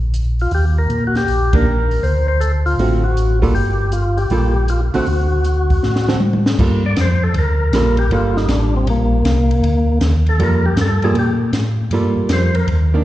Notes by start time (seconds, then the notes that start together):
Already playing: A#1
0.14 closed hi-hat
0.39 F4, open hi-hat
0.51 D#2 G4, open hi-hat
0.78 A#4
0.89 A#2, closed hi-hat
1.07 F#4
1.15 G4, snare, open hi-hat
1.27 A#1, open hi-hat
1.53 D#3 G3 A#3 D4 A#4, kick, ride
1.91 open hi-hat
2.02 D2 C5, open hi-hat
2.28 C5
2.40 A4, closed hi-hat
2.66 F4, open hi-hat
2.77 A1 D3 A3 C4 F#4, open hi-hat
3.04 F#4
3.17 closed hi-hat
3.42 G3 A#3 F4 A4, kick, open hi-hat
3.53 G1 G4, open hi-hat
3.92 F4, closed hi-hat
4.17 G4, open hi-hat
4.30 A#1 G3 A#3 F4 A4, open hi-hat
4.68 F4, closed hi-hat
4.94 A#1 D3 A3 C4 F#4, open hi-hat
5.06 D2, open hi-hat
5.44 closed hi-hat
5.70 kick, open hi-hat
5.83 A2, snare
5.96 snare
6.08 D3 A3 C4 F#4, snare
6.20 mid tom
6.33 mid tom
6.46 snare
6.59 G2 G3 A#3 F4 A4, kick, crash
6.86 D5
6.96 F2, snare, hi-hat pedal, ride
7.01 C5
7.23 A4
7.34 D2, ride
7.39 A#4
7.72 A#1 G3 A#3 F4, snare, hi-hat pedal, ride
7.76 A4
7.97 G4, ride
8.10 G1 G3 A#3 F4 A4, ride
8.37 D#4, snare
8.47 A1 D4, snare, hi-hat pedal, ride
8.76 C4
8.85 A#1, ride
8.90 A#3
9.24 C2, snare, hi-hat pedal, ride
9.51 ride
9.62 D2, ride
10.00 D#2, snare, hi-hat pedal, ride
10.26 A4, ride
10.38 F2 G3 A#3 F4 A4, ride
10.43 A#4
10.66 G4
10.76 G2, snare, hi-hat pedal, ride
10.81 A4
11.02 G3 A#3 F4 G#4 A4, ride
11.14 A#2, ride
11.19 G4
11.52 A2, snare, hi-hat pedal, ride
11.90 G2 G3 A#3 F4 A4, ride
12.16 G2
12.29 F2 C5, snare, hi-hat pedal, ride
12.55 A#4, ride
12.67 D#2, ride
12.94 D#3 A#3 D4